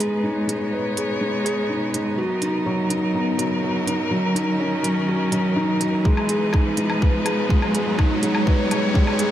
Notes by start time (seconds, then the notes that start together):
Already playing: G#3 B3 D#4 B4, riser
0.00 G#4, closed hi-hat
0.23 D#4 C#5
0.47 G#3, closed hi-hat
0.72 B4
0.96 G#4, closed hi-hat
1.21 G#3
1.44 G#4, closed hi-hat
1.69 D#4
1.94 G#3, closed hi-hat
2.18 F#3 F#4 A#4
2.42 D#4, closed hi-hat
2.66 F#3
2.90 D#4, closed hi-hat
3.14 B3
3.39 F#3, closed hi-hat
3.63 F#4
3.87 D#4, closed hi-hat
4.11 F#3 C#4
4.35 D#4, closed hi-hat
4.60 C#4
4.83 F#3, closed hi-hat
5.08 F#4
5.32 F#3, closed hi-hat
5.56 D#4
5.81 F#3, closed hi-hat
6.05 G#3 B3 B4, kick
6.17 low woodblock
6.29 G#4, closed hi-hat
6.53 D#4, kick, low woodblock
6.77 G#3, closed hi-hat
6.90 low woodblock
7.01 B4, kick
7.25 G#4, closed hi-hat, low woodblock
7.49 G#3, kick
7.62 low woodblock
7.73 G#4, closed hi-hat
7.98 D#4 C#5, kick, low woodblock
8.22 G#3, closed hi-hat
8.35 low woodblock
8.46 B4, kick
8.70 G#4, closed hi-hat, low woodblock
8.94 G#3, kick
9.07 low woodblock
9.19 G#4, closed hi-hat